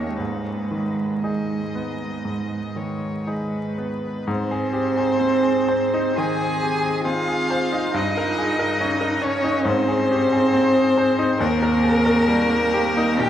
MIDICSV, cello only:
0, 0, Header, 1, 2, 480
1, 0, Start_track
1, 0, Key_signature, 5, "minor"
1, 0, Tempo, 1058201
1, 87, Time_signature, 4, 2, 24, 8
1, 567, Tempo, 1022147
1, 1527, Tempo, 993377
1, 2007, Tempo, 910470
1, 2008, Key_signature, -4, "major"
1, 2487, Tempo, 985222
1, 2967, Tempo, 870827
1, 6327, Tempo, 927357
1, 6853, End_track
2, 0, Start_track
2, 0, Title_t, "Cello"
2, 0, Program_c, 0, 42
2, 0, Note_on_c, 0, 58, 48
2, 80, Note_off_c, 0, 58, 0
2, 90, Note_on_c, 0, 56, 44
2, 1758, Note_off_c, 0, 56, 0
2, 1996, Note_on_c, 0, 60, 71
2, 2952, Note_on_c, 0, 68, 72
2, 2959, Note_off_c, 0, 60, 0
2, 3441, Note_off_c, 0, 68, 0
2, 3444, Note_on_c, 0, 65, 82
2, 3926, Note_off_c, 0, 65, 0
2, 3947, Note_on_c, 0, 63, 75
2, 4648, Note_on_c, 0, 61, 78
2, 4656, Note_off_c, 0, 63, 0
2, 4898, Note_on_c, 0, 60, 84
2, 4906, Note_off_c, 0, 61, 0
2, 5854, Note_off_c, 0, 60, 0
2, 5864, Note_on_c, 0, 58, 90
2, 6804, Note_on_c, 0, 67, 99
2, 6811, Note_off_c, 0, 58, 0
2, 6853, Note_off_c, 0, 67, 0
2, 6853, End_track
0, 0, End_of_file